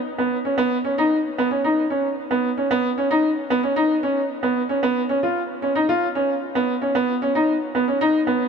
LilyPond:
\new Staff \with { instrumentName = "Upright piano" } { \time 4/4 \key b \lydian \tempo 4 = 113 r16 b8 cis'16 b8 cis'16 dis'8 r16 b16 cis'16 dis'8 cis'8 | r16 b8 cis'16 b8 cis'16 dis'8 r16 b16 cis'16 dis'8 cis'8 | r16 b8 cis'16 b8 cis'16 eis'8 r16 cis'16 dis'16 eis'8 cis'8 | r16 b8 cis'16 b8 cis'16 dis'8 r16 b16 cis'16 dis'8 b8 | }